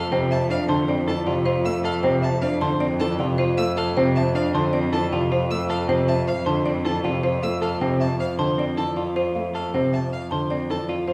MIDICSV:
0, 0, Header, 1, 6, 480
1, 0, Start_track
1, 0, Key_signature, -1, "major"
1, 0, Tempo, 384615
1, 1108, Time_signature, 5, 2, 24, 8
1, 13894, End_track
2, 0, Start_track
2, 0, Title_t, "Violin"
2, 0, Program_c, 0, 40
2, 392, Note_on_c, 0, 81, 74
2, 571, Note_off_c, 0, 81, 0
2, 628, Note_on_c, 0, 77, 74
2, 808, Note_off_c, 0, 77, 0
2, 1348, Note_on_c, 0, 81, 75
2, 1528, Note_off_c, 0, 81, 0
2, 2066, Note_on_c, 0, 88, 75
2, 2247, Note_off_c, 0, 88, 0
2, 2306, Note_on_c, 0, 77, 70
2, 2487, Note_off_c, 0, 77, 0
2, 2784, Note_on_c, 0, 81, 75
2, 2966, Note_off_c, 0, 81, 0
2, 3014, Note_on_c, 0, 77, 69
2, 3199, Note_off_c, 0, 77, 0
2, 3739, Note_on_c, 0, 81, 77
2, 3922, Note_off_c, 0, 81, 0
2, 4460, Note_on_c, 0, 88, 80
2, 4643, Note_off_c, 0, 88, 0
2, 4702, Note_on_c, 0, 77, 70
2, 4884, Note_off_c, 0, 77, 0
2, 5187, Note_on_c, 0, 81, 75
2, 5367, Note_off_c, 0, 81, 0
2, 5426, Note_on_c, 0, 77, 73
2, 5607, Note_off_c, 0, 77, 0
2, 6149, Note_on_c, 0, 81, 73
2, 6328, Note_off_c, 0, 81, 0
2, 6870, Note_on_c, 0, 88, 72
2, 7049, Note_off_c, 0, 88, 0
2, 7106, Note_on_c, 0, 77, 68
2, 7287, Note_off_c, 0, 77, 0
2, 7588, Note_on_c, 0, 81, 74
2, 7768, Note_off_c, 0, 81, 0
2, 7832, Note_on_c, 0, 77, 74
2, 8011, Note_off_c, 0, 77, 0
2, 8553, Note_on_c, 0, 81, 68
2, 8731, Note_off_c, 0, 81, 0
2, 9271, Note_on_c, 0, 88, 68
2, 9450, Note_off_c, 0, 88, 0
2, 9509, Note_on_c, 0, 77, 65
2, 9689, Note_off_c, 0, 77, 0
2, 9994, Note_on_c, 0, 81, 64
2, 10172, Note_off_c, 0, 81, 0
2, 10232, Note_on_c, 0, 77, 66
2, 10411, Note_off_c, 0, 77, 0
2, 10949, Note_on_c, 0, 81, 62
2, 11129, Note_off_c, 0, 81, 0
2, 11918, Note_on_c, 0, 77, 58
2, 12094, Note_off_c, 0, 77, 0
2, 12399, Note_on_c, 0, 81, 59
2, 12575, Note_off_c, 0, 81, 0
2, 12638, Note_on_c, 0, 77, 58
2, 12814, Note_off_c, 0, 77, 0
2, 13356, Note_on_c, 0, 81, 60
2, 13533, Note_off_c, 0, 81, 0
2, 13894, End_track
3, 0, Start_track
3, 0, Title_t, "Marimba"
3, 0, Program_c, 1, 12
3, 0, Note_on_c, 1, 69, 68
3, 152, Note_on_c, 1, 72, 94
3, 218, Note_off_c, 1, 69, 0
3, 386, Note_on_c, 1, 76, 68
3, 461, Note_off_c, 1, 72, 0
3, 630, Note_on_c, 1, 72, 70
3, 699, Note_off_c, 1, 76, 0
3, 856, Note_on_c, 1, 81, 89
3, 941, Note_off_c, 1, 72, 0
3, 1104, Note_on_c, 1, 74, 89
3, 1176, Note_off_c, 1, 81, 0
3, 1342, Note_on_c, 1, 69, 74
3, 1419, Note_off_c, 1, 74, 0
3, 1580, Note_on_c, 1, 74, 74
3, 1658, Note_off_c, 1, 69, 0
3, 1816, Note_on_c, 1, 72, 87
3, 1897, Note_off_c, 1, 74, 0
3, 2057, Note_on_c, 1, 77, 73
3, 2136, Note_off_c, 1, 72, 0
3, 2299, Note_on_c, 1, 69, 68
3, 2376, Note_off_c, 1, 77, 0
3, 2536, Note_on_c, 1, 72, 96
3, 2617, Note_off_c, 1, 69, 0
3, 2772, Note_on_c, 1, 76, 74
3, 2856, Note_off_c, 1, 72, 0
3, 3016, Note_on_c, 1, 72, 73
3, 3095, Note_off_c, 1, 76, 0
3, 3261, Note_on_c, 1, 81, 90
3, 3336, Note_off_c, 1, 72, 0
3, 3499, Note_on_c, 1, 74, 93
3, 3578, Note_off_c, 1, 81, 0
3, 3748, Note_on_c, 1, 69, 69
3, 3817, Note_off_c, 1, 74, 0
3, 3980, Note_on_c, 1, 74, 72
3, 4060, Note_off_c, 1, 69, 0
3, 4220, Note_on_c, 1, 72, 93
3, 4297, Note_off_c, 1, 74, 0
3, 4465, Note_on_c, 1, 77, 76
3, 4537, Note_off_c, 1, 72, 0
3, 4708, Note_on_c, 1, 69, 70
3, 4779, Note_off_c, 1, 77, 0
3, 4950, Note_on_c, 1, 72, 93
3, 5020, Note_off_c, 1, 69, 0
3, 5195, Note_on_c, 1, 76, 74
3, 5261, Note_off_c, 1, 72, 0
3, 5430, Note_on_c, 1, 72, 70
3, 5503, Note_off_c, 1, 76, 0
3, 5677, Note_on_c, 1, 81, 92
3, 5741, Note_off_c, 1, 72, 0
3, 5904, Note_on_c, 1, 74, 87
3, 5983, Note_off_c, 1, 81, 0
3, 6148, Note_on_c, 1, 69, 70
3, 6219, Note_off_c, 1, 74, 0
3, 6397, Note_on_c, 1, 74, 73
3, 6460, Note_off_c, 1, 69, 0
3, 6638, Note_on_c, 1, 72, 88
3, 6703, Note_off_c, 1, 74, 0
3, 6877, Note_on_c, 1, 77, 69
3, 6944, Note_off_c, 1, 72, 0
3, 7111, Note_on_c, 1, 69, 65
3, 7183, Note_off_c, 1, 77, 0
3, 7351, Note_on_c, 1, 72, 93
3, 7421, Note_off_c, 1, 69, 0
3, 7593, Note_on_c, 1, 76, 70
3, 7661, Note_off_c, 1, 72, 0
3, 7830, Note_on_c, 1, 72, 65
3, 7902, Note_off_c, 1, 76, 0
3, 8067, Note_on_c, 1, 81, 84
3, 8141, Note_off_c, 1, 72, 0
3, 8307, Note_on_c, 1, 74, 87
3, 8380, Note_off_c, 1, 81, 0
3, 8546, Note_on_c, 1, 69, 68
3, 8620, Note_off_c, 1, 74, 0
3, 8790, Note_on_c, 1, 74, 72
3, 8859, Note_off_c, 1, 69, 0
3, 9029, Note_on_c, 1, 72, 90
3, 9101, Note_off_c, 1, 74, 0
3, 9264, Note_on_c, 1, 77, 65
3, 9340, Note_off_c, 1, 72, 0
3, 9504, Note_on_c, 1, 69, 64
3, 9579, Note_off_c, 1, 77, 0
3, 9752, Note_on_c, 1, 72, 82
3, 9819, Note_off_c, 1, 69, 0
3, 9986, Note_on_c, 1, 76, 67
3, 10061, Note_off_c, 1, 72, 0
3, 10227, Note_on_c, 1, 72, 67
3, 10299, Note_off_c, 1, 76, 0
3, 10469, Note_on_c, 1, 81, 77
3, 10540, Note_off_c, 1, 72, 0
3, 10723, Note_on_c, 1, 74, 75
3, 10780, Note_off_c, 1, 81, 0
3, 10958, Note_on_c, 1, 69, 60
3, 11025, Note_off_c, 1, 74, 0
3, 11188, Note_on_c, 1, 74, 64
3, 11263, Note_off_c, 1, 69, 0
3, 11434, Note_on_c, 1, 72, 81
3, 11500, Note_off_c, 1, 74, 0
3, 11672, Note_on_c, 1, 77, 64
3, 11742, Note_off_c, 1, 72, 0
3, 11912, Note_on_c, 1, 69, 59
3, 11982, Note_off_c, 1, 77, 0
3, 12155, Note_on_c, 1, 72, 75
3, 12222, Note_off_c, 1, 69, 0
3, 12390, Note_on_c, 1, 76, 57
3, 12463, Note_off_c, 1, 72, 0
3, 12701, Note_off_c, 1, 76, 0
3, 12866, Note_on_c, 1, 81, 73
3, 13108, Note_on_c, 1, 74, 75
3, 13179, Note_off_c, 1, 81, 0
3, 13355, Note_on_c, 1, 69, 54
3, 13420, Note_off_c, 1, 74, 0
3, 13586, Note_on_c, 1, 74, 57
3, 13662, Note_off_c, 1, 69, 0
3, 13823, Note_on_c, 1, 72, 75
3, 13894, Note_off_c, 1, 72, 0
3, 13894, Note_off_c, 1, 74, 0
3, 13894, End_track
4, 0, Start_track
4, 0, Title_t, "Clean electric guitar"
4, 0, Program_c, 2, 27
4, 0, Note_on_c, 2, 69, 69
4, 146, Note_on_c, 2, 60, 89
4, 221, Note_off_c, 2, 69, 0
4, 459, Note_off_c, 2, 60, 0
4, 624, Note_on_c, 2, 62, 72
4, 863, Note_on_c, 2, 72, 89
4, 939, Note_off_c, 2, 62, 0
4, 1102, Note_on_c, 2, 60, 73
4, 1178, Note_off_c, 2, 72, 0
4, 1343, Note_on_c, 2, 69, 71
4, 1418, Note_off_c, 2, 60, 0
4, 1582, Note_on_c, 2, 65, 84
4, 1658, Note_off_c, 2, 69, 0
4, 1807, Note_off_c, 2, 65, 0
4, 1822, Note_on_c, 2, 65, 91
4, 2138, Note_off_c, 2, 65, 0
4, 2304, Note_on_c, 2, 69, 73
4, 2550, Note_on_c, 2, 60, 85
4, 2619, Note_off_c, 2, 69, 0
4, 2861, Note_off_c, 2, 60, 0
4, 3028, Note_on_c, 2, 62, 74
4, 3268, Note_on_c, 2, 72, 95
4, 3340, Note_off_c, 2, 62, 0
4, 3508, Note_on_c, 2, 60, 74
4, 3580, Note_off_c, 2, 72, 0
4, 3756, Note_on_c, 2, 69, 75
4, 3820, Note_off_c, 2, 60, 0
4, 3995, Note_on_c, 2, 65, 91
4, 4063, Note_off_c, 2, 69, 0
4, 4217, Note_off_c, 2, 65, 0
4, 4232, Note_on_c, 2, 65, 91
4, 4542, Note_off_c, 2, 65, 0
4, 4714, Note_on_c, 2, 69, 73
4, 4957, Note_on_c, 2, 60, 94
4, 5022, Note_off_c, 2, 69, 0
4, 5263, Note_off_c, 2, 60, 0
4, 5429, Note_on_c, 2, 62, 79
4, 5672, Note_on_c, 2, 72, 94
4, 5741, Note_off_c, 2, 62, 0
4, 5911, Note_on_c, 2, 60, 72
4, 5982, Note_off_c, 2, 72, 0
4, 6149, Note_on_c, 2, 69, 71
4, 6221, Note_off_c, 2, 60, 0
4, 6395, Note_on_c, 2, 65, 90
4, 6460, Note_off_c, 2, 69, 0
4, 6620, Note_off_c, 2, 65, 0
4, 6635, Note_on_c, 2, 65, 86
4, 6943, Note_off_c, 2, 65, 0
4, 7111, Note_on_c, 2, 69, 72
4, 7345, Note_on_c, 2, 60, 84
4, 7421, Note_off_c, 2, 69, 0
4, 7659, Note_off_c, 2, 60, 0
4, 8064, Note_on_c, 2, 72, 90
4, 8311, Note_on_c, 2, 60, 74
4, 8379, Note_off_c, 2, 72, 0
4, 8552, Note_on_c, 2, 69, 70
4, 8621, Note_off_c, 2, 60, 0
4, 8794, Note_on_c, 2, 65, 87
4, 8862, Note_off_c, 2, 69, 0
4, 9012, Note_off_c, 2, 65, 0
4, 9027, Note_on_c, 2, 65, 77
4, 9340, Note_off_c, 2, 65, 0
4, 9509, Note_on_c, 2, 69, 67
4, 9751, Note_on_c, 2, 60, 81
4, 9820, Note_off_c, 2, 69, 0
4, 10061, Note_off_c, 2, 60, 0
4, 10468, Note_on_c, 2, 72, 87
4, 10709, Note_on_c, 2, 60, 60
4, 10780, Note_off_c, 2, 72, 0
4, 10950, Note_on_c, 2, 69, 64
4, 11020, Note_off_c, 2, 60, 0
4, 11191, Note_on_c, 2, 65, 77
4, 11261, Note_off_c, 2, 69, 0
4, 11419, Note_off_c, 2, 65, 0
4, 11434, Note_on_c, 2, 65, 73
4, 11742, Note_off_c, 2, 65, 0
4, 11916, Note_on_c, 2, 69, 58
4, 12160, Note_on_c, 2, 60, 73
4, 12223, Note_off_c, 2, 69, 0
4, 12464, Note_off_c, 2, 60, 0
4, 12879, Note_on_c, 2, 72, 71
4, 13119, Note_on_c, 2, 60, 55
4, 13184, Note_off_c, 2, 72, 0
4, 13360, Note_on_c, 2, 69, 57
4, 13424, Note_off_c, 2, 60, 0
4, 13593, Note_on_c, 2, 65, 74
4, 13664, Note_off_c, 2, 69, 0
4, 13817, Note_off_c, 2, 65, 0
4, 13832, Note_on_c, 2, 65, 71
4, 13894, Note_off_c, 2, 65, 0
4, 13894, End_track
5, 0, Start_track
5, 0, Title_t, "Grand piano"
5, 0, Program_c, 3, 0
5, 155, Note_on_c, 3, 48, 85
5, 462, Note_off_c, 3, 48, 0
5, 861, Note_on_c, 3, 50, 85
5, 1177, Note_off_c, 3, 50, 0
5, 1346, Note_on_c, 3, 52, 66
5, 1587, Note_on_c, 3, 48, 71
5, 1659, Note_off_c, 3, 52, 0
5, 1900, Note_off_c, 3, 48, 0
5, 2065, Note_on_c, 3, 57, 68
5, 2379, Note_off_c, 3, 57, 0
5, 2544, Note_on_c, 3, 48, 86
5, 2859, Note_off_c, 3, 48, 0
5, 3267, Note_on_c, 3, 50, 82
5, 3580, Note_off_c, 3, 50, 0
5, 3748, Note_on_c, 3, 52, 67
5, 3988, Note_on_c, 3, 48, 72
5, 4060, Note_off_c, 3, 52, 0
5, 4300, Note_off_c, 3, 48, 0
5, 4472, Note_on_c, 3, 57, 72
5, 4782, Note_off_c, 3, 57, 0
5, 4958, Note_on_c, 3, 48, 86
5, 5264, Note_off_c, 3, 48, 0
5, 5671, Note_on_c, 3, 50, 87
5, 5981, Note_off_c, 3, 50, 0
5, 6152, Note_on_c, 3, 52, 68
5, 6397, Note_on_c, 3, 48, 70
5, 6462, Note_off_c, 3, 52, 0
5, 6703, Note_off_c, 3, 48, 0
5, 6872, Note_on_c, 3, 57, 66
5, 7181, Note_off_c, 3, 57, 0
5, 7348, Note_on_c, 3, 48, 80
5, 7660, Note_off_c, 3, 48, 0
5, 8070, Note_on_c, 3, 50, 84
5, 8381, Note_off_c, 3, 50, 0
5, 8552, Note_on_c, 3, 52, 65
5, 8788, Note_on_c, 3, 48, 65
5, 8862, Note_off_c, 3, 52, 0
5, 9100, Note_off_c, 3, 48, 0
5, 9274, Note_on_c, 3, 57, 66
5, 9582, Note_off_c, 3, 57, 0
5, 9751, Note_on_c, 3, 48, 80
5, 10061, Note_off_c, 3, 48, 0
5, 10468, Note_on_c, 3, 50, 80
5, 10780, Note_off_c, 3, 50, 0
5, 10950, Note_on_c, 3, 52, 57
5, 11261, Note_off_c, 3, 52, 0
5, 11674, Note_on_c, 3, 57, 58
5, 11982, Note_off_c, 3, 57, 0
5, 12156, Note_on_c, 3, 48, 71
5, 12463, Note_off_c, 3, 48, 0
5, 12876, Note_on_c, 3, 50, 69
5, 13183, Note_off_c, 3, 50, 0
5, 13358, Note_on_c, 3, 52, 55
5, 13664, Note_off_c, 3, 52, 0
5, 13894, End_track
6, 0, Start_track
6, 0, Title_t, "Cello"
6, 0, Program_c, 4, 42
6, 0, Note_on_c, 4, 41, 73
6, 13894, Note_off_c, 4, 41, 0
6, 13894, End_track
0, 0, End_of_file